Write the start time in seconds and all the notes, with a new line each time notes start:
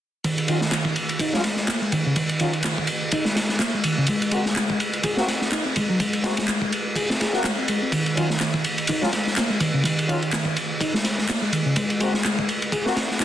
0.24 D#3, kick, ride
0.38 ride
0.48 D#3 F#3 C#4 F4, ride
0.61 snare
0.71 snare, clap, ride
0.85 kick
0.96 ride
1.09 ride
1.19 D#4, kick, ride
1.34 F#3 G#3 C#4 F4, snare
1.44 snare, ride
1.56 snare
1.68 A#3, snare, clap, ride
1.82 G#3
1.92 D#3, kick, ride
2.06 C#3
2.16 kick, ride
2.29 ride
2.40 D#3 F#3 C#4 F4, ride
2.53 ride
2.63 snare, clap, ride
2.78 kick
2.87 ride
3.12 D#4, kick, ride
3.25 G#3, snare
3.36 snare, ride
3.49 snare
3.59 A#3, snare, clap, ride
3.74 G#3
3.84 D#3, ride
3.98 C#3
4.07 G#3, kick, ride
4.22 ride
4.31 G#3 A#3 C4 F#4, ride
4.46 snare
4.56 snare, clap, ride
4.70 kick
4.80 ride
4.93 ride
5.03 G#4, kick, ride
5.17 A#3 C4 F#4, snare
5.28 snare, ride
5.41 snare
5.52 D#4, snare, clap, ride
5.65 C4
5.76 G#3, kick, ride
5.90 F#3
6.00 G#3, kick, ride
6.13 ride
6.24 G#3 A#3 C4 F#4, snare, ride
6.37 snare, ride
6.48 snare, clap, ride
6.62 kick
6.72 ride
6.96 G#4, kick, ride
7.10 C4, snare
7.21 G#4, snare, ride
7.33 A#3 C4 F#4, snare
7.44 G#3, snare, clap, ride
7.58 C4
7.68 G#3, ride
7.82 C4
7.92 D#3, kick, ride
8.06 ride
8.16 D#3 F#3 C#4 F4, ride
8.30 snare
8.40 snare, clap, ride
8.54 kick
8.64 ride
8.78 ride
8.87 D#4, kick, ride
9.02 F#3 G#3 C#4 F4, snare
9.13 snare, ride
9.27 snare
9.36 A#3, snare, clap, ride
9.50 G#3
9.60 D#3, kick, ride
9.74 C#3
9.84 D#3, kick, ride
9.99 ride
10.08 D#3 F#3 C#4 F4, ride
10.22 ride
10.32 snare, clap, ride
10.45 kick
10.56 ride
10.81 D#4, kick, ride
10.94 G#3, snare
11.04 snare, ride
11.18 snare
11.29 A#3, snare, clap, ride
11.42 G#3
11.53 D#3, ride
11.66 C#3
11.76 G#3, kick, ride
11.90 ride
12.00 G#3 A#3 C4 F#4, ride
12.14 snare
12.25 snare, clap, ride
12.39 kick
12.49 ride
12.62 ride
12.72 G#4, kick, ride
12.86 A#3 C4 F#4, snare
12.96 snare, ride
13.11 snare
13.20 D#4, snare, clap, ride